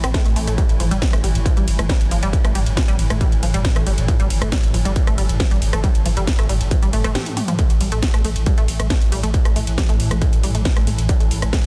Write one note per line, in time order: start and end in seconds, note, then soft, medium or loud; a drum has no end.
0.00 0.14 A1 medium
0.00 7.58 A2 medium
0.00 7.58 E3 medium
0.00 0.10 C4 loud
0.00 cross-stick loud
0.00 closed hi-hat medium
0.00 ride medium
0.14 0.21 A3 medium
0.14 kick loud
0.14 snare loud
0.14 closed hi-hat medium
0.14 ride medium
0.26 0.35 A1 medium
0.26 0.32 A3 medium
0.26 closed hi-hat soft
0.26 ride medium
0.36 0.47 A1 loud
0.36 0.46 A3 medium
0.36 open hi-hat loud
0.36 ride medium
0.47 0.58 A1 medium
0.47 0.54 A3 loud
0.47 closed hi-hat medium
0.47 ride medium
0.58 0.62 G3 medium
0.58 kick loud
0.58 closed hi-hat medium
0.58 ride medium
0.69 0.79 G1 medium
0.69 closed hi-hat soft
0.69 ride medium
0.80 0.90 G1 loud
0.80 0.87 F3 medium
0.80 open hi-hat loud
0.80 ride medium
0.91 1.02 G1 medium
0.91 0.98 G3 loud
0.91 closed hi-hat medium
0.91 ride medium
1.02 kick loud
1.02 snare loud
1.02 closed hi-hat medium
1.02 ride medium
1.13 1.23 G1 medium
1.13 1.20 A3 medium
1.13 cross-stick loud
1.13 closed hi-hat medium
1.13 ride medium
1.24 1.34 G1 loud
1.24 1.28 G3 medium
1.24 open hi-hat loud
1.24 ride medium
1.35 1.45 G1 medium
1.35 closed hi-hat soft
1.35 ride medium
1.46 1.53 F3 medium
1.46 kick loud
1.46 closed hi-hat medium
1.46 ride medium
1.57 1.67 G1 medium
1.57 1.63 G3 loud
1.57 closed hi-hat medium
1.57 ride medium
1.68 1.78 G1 loud
1.68 open hi-hat loud
1.68 ride medium
1.79 1.89 G1 medium
1.79 1.85 A3 medium
1.79 cross-stick loud
1.79 closed hi-hat soft
1.79 ride medium
1.89 1.94 G3 medium
1.89 kick loud
1.89 snare loud
1.89 closed hi-hat medium
1.89 ride medium
2.01 2.11 G1 medium
2.01 closed hi-hat medium
2.01 ride medium
2.11 2.22 G1 loud
2.11 2.18 F3 medium
2.11 open hi-hat loud
2.11 ride medium
2.23 2.33 G1 medium
2.23 2.29 G3 loud
2.23 closed hi-hat medium
2.23 ride medium
2.33 kick loud
2.33 closed hi-hat medium
2.33 ride medium
2.45 2.54 G1 medium
2.45 2.51 A3 medium
2.45 cross-stick loud
2.45 closed hi-hat medium
2.45 ride medium
2.55 2.66 G1 loud
2.55 2.59 G3 medium
2.55 open hi-hat loud
2.55 ride medium
2.66 2.77 G1 medium
2.66 closed hi-hat soft
2.66 ride medium
2.77 2.84 F3 medium
2.77 kick loud
2.77 snare loud
2.77 closed hi-hat medium
2.77 ride medium
2.88 2.98 G1 medium
2.88 2.95 G3 loud
2.88 closed hi-hat medium
2.88 ride medium
2.99 3.09 G1 loud
2.99 open hi-hat medium
2.99 ride medium
3.10 3.21 G1 medium
3.10 3.17 A3 medium
3.10 cross-stick loud
3.10 closed hi-hat soft
3.10 ride medium
3.21 3.25 G3 medium
3.21 kick loud
3.21 closed hi-hat medium
3.21 ride medium
3.32 3.42 G1 medium
3.32 closed hi-hat soft
3.32 ride medium
3.43 3.53 G1 loud
3.43 3.50 F3 medium
3.43 open hi-hat loud
3.43 ride medium
3.54 3.64 G1 medium
3.54 3.60 G3 loud
3.54 closed hi-hat medium
3.54 ride medium
3.65 kick loud
3.65 snare loud
3.65 closed hi-hat medium
3.65 ride medium
3.76 3.86 G1 medium
3.76 3.82 A3 medium
3.76 cross-stick medium
3.76 closed hi-hat medium
3.76 ride medium
3.87 3.97 G1 loud
3.87 3.91 G3 medium
3.87 open hi-hat medium
3.87 ride medium
3.98 4.08 G1 medium
3.98 closed hi-hat medium
3.98 ride medium
4.08 4.15 F3 medium
4.08 kick loud
4.08 closed hi-hat medium
4.08 ride medium
4.20 4.30 G1 medium
4.20 4.26 G3 loud
4.20 closed hi-hat medium
4.20 ride medium
4.30 4.41 G1 loud
4.30 open hi-hat loud
4.30 ride medium
4.42 4.52 G1 medium
4.42 4.48 A3 medium
4.42 cross-stick loud
4.42 closed hi-hat medium
4.42 ride medium
4.52 4.56 G3 medium
4.52 kick loud
4.52 snare loud
4.52 closed hi-hat medium
4.52 ride medium
4.63 4.74 G1 medium
4.63 closed hi-hat medium
4.63 ride medium
4.74 4.85 G1 loud
4.74 4.81 F3 medium
4.74 open hi-hat medium
4.74 ride medium
4.85 4.96 G1 medium
4.85 4.92 G3 loud
4.85 closed hi-hat medium
4.85 ride medium
4.96 kick loud
4.96 closed hi-hat medium
4.96 ride medium
5.07 5.17 G1 medium
5.07 5.14 A3 medium
5.07 cross-stick medium
5.07 closed hi-hat medium
5.07 ride medium
5.18 5.29 G1 loud
5.18 5.22 G3 medium
5.18 open hi-hat loud
5.18 ride medium
5.29 5.40 G1 medium
5.29 closed hi-hat medium
5.29 ride medium
5.40 5.47 F3 medium
5.40 kick loud
5.40 snare loud
5.40 closed hi-hat medium
5.40 ride medium
5.51 5.61 G1 medium
5.51 5.58 G3 loud
5.51 closed hi-hat medium
5.51 ride medium
5.62 5.72 G1 loud
5.62 open hi-hat medium
5.62 ride medium
5.73 5.83 G1 medium
5.73 5.80 A3 medium
5.73 cross-stick loud
5.73 closed hi-hat medium
5.73 ride medium
5.84 5.88 G3 medium
5.84 kick loud
5.84 closed hi-hat medium
5.84 ride medium
5.95 6.05 G1 medium
5.95 closed hi-hat medium
5.95 ride medium
6.06 6.16 G1 loud
6.06 6.12 F3 medium
6.06 open hi-hat loud
6.06 ride medium
6.17 6.27 G1 medium
6.17 6.23 G3 loud
6.17 closed hi-hat medium
6.17 ride medium
6.27 kick loud
6.27 snare loud
6.27 closed hi-hat medium
6.27 ride medium
6.39 6.49 G1 medium
6.39 6.45 A3 medium
6.39 cross-stick medium
6.39 closed hi-hat medium
6.39 ride medium
6.49 6.60 G1 loud
6.49 6.53 G3 medium
6.49 open hi-hat medium
6.49 ride medium
6.61 6.71 G1 medium
6.61 closed hi-hat medium
6.61 ride medium
6.71 6.78 F3 medium
6.71 kick loud
6.71 closed hi-hat medium
6.71 ride medium
6.83 6.93 G1 medium
6.83 6.89 G3 loud
6.83 closed hi-hat medium
6.83 ride medium
6.93 7.04 G1 loud
6.93 7.03 A3 medium
6.93 open hi-hat loud
6.93 ride medium
7.04 7.15 G1 medium
7.04 7.11 A3 loud
7.04 cross-stick medium
7.04 closed hi-hat medium
7.04 ride medium
7.15 7.22 G4 medium
7.15 snare loud
7.15 closed hi-hat medium
7.15 high tom medium
7.15 ride medium
7.26 closed hi-hat medium
7.26 high tom medium
7.26 ride medium
7.37 7.41 G4 medium
7.37 open hi-hat loud
7.37 mid tom medium
7.37 ride medium
7.48 7.55 F3 loud
7.48 closed hi-hat medium
7.48 mid tom medium
7.48 ride medium
7.59 11.66 A2 medium
7.59 11.66 E3 medium
7.59 7.63 A3 medium
7.59 kick loud
7.59 closed hi-hat medium
7.59 ride medium
7.70 7.80 A1 medium
7.70 closed hi-hat medium
7.70 ride medium
7.81 7.91 A1 loud
7.81 7.88 G3 medium
7.81 open hi-hat loud
7.81 ride medium
7.92 8.02 A1 medium
7.92 7.98 A3 loud
7.92 closed hi-hat medium
7.92 ride medium
8.03 kick loud
8.03 snare loud
8.03 closed hi-hat medium
8.03 ride medium
8.14 8.24 A1 medium
8.14 8.20 A3 medium
8.14 cross-stick medium
8.14 closed hi-hat medium
8.14 ride medium
8.24 8.35 A1 loud
8.24 8.29 A3 medium
8.24 open hi-hat medium
8.24 ride medium
8.36 8.46 A1 medium
8.36 closed hi-hat medium
8.36 ride medium
8.46 8.53 G3 medium
8.46 kick loud
8.46 closed hi-hat medium
8.46 ride medium
8.58 8.68 A1 medium
8.58 8.64 A3 loud
8.58 closed hi-hat medium
8.58 ride medium
8.68 8.79 A1 loud
8.68 open hi-hat loud
8.68 ride medium
8.79 8.90 A1 medium
8.79 8.86 A3 medium
8.79 cross-stick medium
8.79 closed hi-hat medium
8.79 ride medium
8.90 8.94 A3 medium
8.90 kick loud
8.90 snare loud
8.90 closed hi-hat medium
8.90 ride medium
9.01 9.11 A1 medium
9.01 closed hi-hat medium
9.01 ride medium
9.12 9.23 A1 loud
9.12 9.19 G3 medium
9.12 open hi-hat loud
9.12 ride medium
9.23 9.34 A1 medium
9.23 9.30 A3 loud
9.23 closed hi-hat medium
9.23 ride medium
9.34 kick loud
9.34 closed hi-hat medium
9.34 ride medium
9.45 9.55 A1 medium
9.45 9.52 A3 medium
9.45 cross-stick medium
9.45 closed hi-hat medium
9.45 ride medium
9.56 9.67 A1 loud
9.56 9.60 A3 medium
9.56 open hi-hat loud
9.56 ride medium
9.67 9.78 A1 medium
9.67 closed hi-hat medium
9.67 ride medium
9.78 9.85 G3 medium
9.78 kick loud
9.78 snare loud
9.78 closed hi-hat medium
9.78 ride medium
9.89 9.99 A1 medium
9.89 9.95 A3 loud
9.89 closed hi-hat medium
9.89 ride medium
10.00 10.10 A1 loud
10.00 open hi-hat medium
10.00 ride medium
10.11 10.21 A1 medium
10.11 10.17 A3 medium
10.11 cross-stick medium
10.11 closed hi-hat medium
10.11 ride medium
10.22 10.26 A3 medium
10.22 kick loud
10.22 closed hi-hat medium
10.22 ride medium
10.33 10.43 A1 medium
10.33 closed hi-hat medium
10.33 ride medium
10.43 10.54 A1 loud
10.43 10.50 G3 medium
10.43 open hi-hat loud
10.43 ride medium
10.55 10.65 A1 medium
10.55 10.61 A3 loud
10.55 closed hi-hat medium
10.55 ride medium
10.65 kick loud
10.65 snare loud
10.65 closed hi-hat medium
10.65 ride medium
10.77 10.87 A1 medium
10.77 10.83 A3 medium
10.77 cross-stick medium
10.77 closed hi-hat medium
10.77 ride medium
10.87 10.98 A1 loud
10.87 10.91 A3 medium
10.87 open hi-hat loud
10.87 ride medium
10.98 11.09 A1 medium
10.98 closed hi-hat medium
10.98 ride medium
11.09 11.16 G3 medium
11.09 kick loud
11.09 closed hi-hat medium
11.09 ride medium
11.20 11.30 A1 medium
11.20 11.27 A3 loud
11.20 closed hi-hat medium
11.20 ride medium
11.31 11.42 A1 loud
11.31 open hi-hat loud
11.31 ride medium
11.42 11.53 A1 medium
11.42 11.49 A3 medium
11.42 cross-stick medium
11.42 closed hi-hat medium
11.42 ride medium
11.53 11.57 A3 medium
11.53 kick loud
11.53 snare loud
11.53 closed hi-hat medium
11.53 ride medium